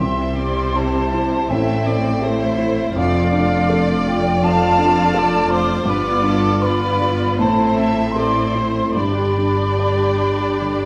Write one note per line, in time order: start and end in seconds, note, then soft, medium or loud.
0.00 1.46 C2 soft
0.00 1.47 C2 soft
0.00 1.10 C3 soft
0.00 1.47 C3 soft
0.00 1.47 G3 soft
0.00 0.27 C4 soft
0.00 0.27 E4 soft
0.00 1.47 E4 soft
0.00 1.47 C5 soft
0.00 0.35 E5 soft
0.00 0.72 C6 soft
0.37 0.98 C4 soft
0.37 0.76 D5 soft
0.75 1.36 G4 soft
0.75 1.51 C5 soft
0.75 1.51 A5 medium
1.14 1.51 E4 soft
1.49 2.92 A1 soft
1.49 2.97 A1 soft
1.49 2.96 A2 soft
1.49 2.21 A3 soft
1.49 1.76 C4 soft
1.49 1.76 E4 soft
1.49 2.21 E4 soft
1.49 2.21 C5 soft
1.49 1.87 E5 soft
1.49 2.23 G5 soft
1.86 2.45 C4 soft
1.86 2.23 D5 medium
2.22 2.94 A3 soft
2.22 2.95 E4 soft
2.22 2.81 A4 soft
2.22 2.95 C5 soft
2.22 2.97 C5 medium
2.22 2.96 E5 medium
2.58 2.96 E4 soft
2.95 5.83 F1 medium
2.95 4.40 F2 medium
2.95 5.83 F2 medium
2.95 4.40 A3 medium
2.95 3.23 D4 medium
2.95 4.41 F4 medium
2.95 3.23 F4 medium
2.95 4.40 D5 medium
2.95 3.33 D5 medium
2.95 3.86 F5 medium
3.33 3.93 D4 soft
3.33 4.42 D5 medium
3.70 4.29 A4 medium
4.07 4.65 F4 medium
4.07 4.44 G5 medium
4.42 5.82 F2 medium
4.42 5.84 A3 medium
4.42 4.69 D4 medium
4.42 5.84 F4 medium
4.42 4.69 F4 medium
4.42 5.84 D5 medium
4.42 5.16 F5 medium
4.42 5.50 A5 medium
4.78 5.36 D4 soft
5.14 5.72 A4 medium
5.14 5.51 D5 medium
5.49 5.86 F4 soft
5.49 5.87 C5 medium
5.49 5.84 D6 medium
5.85 7.37 G1 medium
5.85 7.35 G2 medium
5.85 7.37 G2 medium
5.85 6.59 B3 medium
5.85 6.62 B3 soft
5.85 6.62 F4 medium
5.85 6.60 F4 medium
5.85 6.25 B4 medium
5.85 6.61 D5 medium
5.85 6.61 D6 medium
6.23 6.86 D4 soft
6.23 6.64 A4 medium
6.62 7.39 B3 medium
6.62 7.39 B3 soft
6.62 7.39 F4 soft
6.62 7.25 B4 soft
6.62 7.41 B4 medium
6.62 7.38 D5 medium
6.62 7.40 B5 medium
7.01 7.40 F4 soft
7.39 8.96 A1 soft
7.39 8.91 A2 medium
7.39 8.96 A2 soft
7.39 8.15 A3 medium
7.39 8.16 C4 soft
7.39 8.16 E4 medium
7.39 8.15 E4 soft
7.39 8.14 C5 medium
7.39 7.78 C5 soft
7.39 8.14 A5 medium
7.77 8.39 C4 soft
7.77 8.17 E5 medium
8.15 8.95 A3 soft
8.15 8.95 C4 soft
8.15 8.94 E4 soft
8.15 8.95 E4 soft
8.15 8.79 A4 soft
8.15 8.95 C5 soft
8.15 8.55 D5 soft
8.15 8.95 C6 medium
8.55 8.96 E4 soft
8.55 8.96 C5 soft
8.95 10.85 G1 soft
8.95 10.85 G2 soft
8.95 10.57 G2 soft
8.95 10.85 D4 soft
8.95 10.85 G4 soft
8.95 10.85 D5 soft
8.95 10.85 B5 medium
9.38 10.03 D4 soft
9.79 10.44 D5 soft
10.21 10.85 G4 soft
10.62 10.85 D3 soft